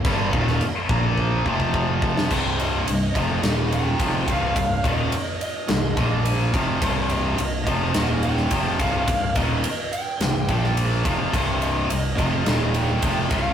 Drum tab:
CC |x---x-----------|x---------------|----------------|----------------|
RD |----------------|--x-x-x-x-x-x-x-|x-x-x-x-x-x-x-x-|x-x-x-x-x-x-x-x-|
SD |---o-----------o|--------o-------|--------o-------|--------o--o----|
BD |o-o---o-o-ooo-o-|o-----o-----o-o-|o-o-------o---o-|o-----o-----o-o-|

CC |----------------|----------------|
RD |x-x-x-x-x-x-x-x-|x-x-x-x-x-x-x-x-|
SD |--------o--o----|--------o-------|
BD |o-o-------o---o-|o-----o-----o-o-|